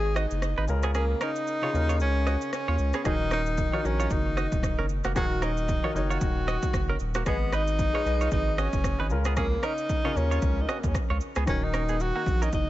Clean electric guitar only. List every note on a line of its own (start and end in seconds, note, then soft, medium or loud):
0.16 0.26 F#4 medium
0.16 0.25 D#5 medium
0.58 0.65 D#4 medium
0.58 0.64 B4 medium
0.84 0.91 B3 medium
0.84 0.90 G#4 medium
0.95 1.04 C#4 medium
0.95 1.04 G#4 loud
1.21 1.31 C#4 medium
1.21 1.30 A#4 medium
1.63 1.70 F4 medium
1.63 1.69 C#5 medium
1.89 1.96 F4 medium
1.89 1.96 C#5 medium
2.27 2.36 F#4 medium
2.27 2.35 D#5 medium
2.68 2.75 F4 medium
2.68 2.75 C#5 medium
2.94 3.01 B3 medium
2.94 3.01 G#4 medium
3.06 3.15 D#4 medium
3.06 3.14 G#4 medium
3.32 3.41 C#4 medium
3.32 3.41 A#4 medium
3.73 3.80 F4 medium
3.73 3.80 C#5 medium
4.00 4.07 F4 medium
4.00 4.06 C#5 medium
4.37 4.47 F#4 medium
4.37 4.46 D#5 medium
4.79 4.86 C#4 medium
4.79 4.85 A#4 medium
5.05 5.12 A#3 medium
5.05 5.11 F#4 medium
5.16 5.26 D#4 medium
5.16 5.25 G#4 loud
5.42 5.52 C#4 medium
5.42 5.51 A#4 medium
5.84 5.91 F4 medium
5.84 5.90 C#5 medium
6.10 6.17 F4 medium
6.10 6.17 C#5 medium
6.48 6.57 F#4 medium
6.48 6.57 D#5 medium
6.89 6.96 C#4 medium
6.89 6.96 A#4 medium
7.16 7.23 A#3 medium
7.16 7.22 F#4 medium
7.27 7.36 B3 medium
7.27 7.36 G#4 loud
7.53 7.63 D#4 medium
7.53 7.62 B4 medium
7.95 8.02 F4 medium
7.95 8.01 C#5 medium
8.21 8.28 F4 medium
8.21 8.27 C#5 medium
8.58 8.68 F#4 medium
8.58 8.67 D#5 medium
9.00 9.07 D#4 medium
9.00 9.06 B4 medium
9.26 9.33 B3 medium
9.26 9.33 G#4 medium
9.37 9.47 C#4 medium
9.37 9.46 G#4 loud
9.63 9.73 C#4 medium
9.63 9.72 A#4 medium
10.05 10.12 F4 medium
10.05 10.11 C#5 medium
10.31 10.38 F4 medium
10.31 10.38 C#5 medium
10.69 10.78 F#4 medium
10.69 10.78 D#5 medium
11.10 11.17 F4 medium
11.10 11.17 C#5 medium
11.37 11.44 B3 medium
11.37 11.43 G#4 medium
11.74 11.83 C#4 medium
11.74 11.83 A#4 medium
11.89 11.96 B3 medium
11.89 11.96 G#4 medium
12.16 12.23 A#3 medium
12.16 12.22 F#4 medium
12.42 12.49 C#4 medium
12.42 12.48 A#4 medium